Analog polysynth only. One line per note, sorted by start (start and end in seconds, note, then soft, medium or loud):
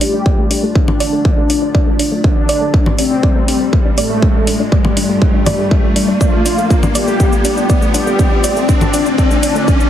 0.01 0.66 G4 medium
0.75 2.14 D4 loud
2.24 2.89 D4 medium
2.99 3.88 C4 loud
3.98 4.62 A3 loud
4.72 6.11 G3 loud
6.21 6.85 F4 loud
6.95 7.85 G4 loud
7.94 8.59 G4 loud
8.69 9.90 D4 loud